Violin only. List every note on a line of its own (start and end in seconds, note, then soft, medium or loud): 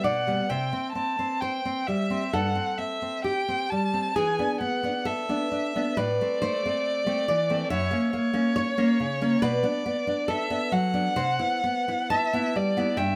0.03 0.51 F#5 soft
0.49 0.92 G5 soft
0.93 1.42 A5 medium
1.41 1.88 G5 soft
1.87 2.35 E5 medium
2.33 2.79 F#5 soft
2.78 3.23 E5 soft
3.25 3.71 G5 soft
3.70 4.17 A5 medium
4.15 4.60 G#5 medium
4.60 5.08 F#5 medium
5.06 5.99 E5 medium
5.98 7.71 D5 medium
7.72 8.13 C#5 medium
8.14 9.44 C#5 medium
9.42 10.32 D5 medium
10.30 10.74 E5 medium
10.73 12.11 F#5 medium
12.12 12.58 E5 medium
12.56 12.98 D5 medium
12.96 13.16 E5 medium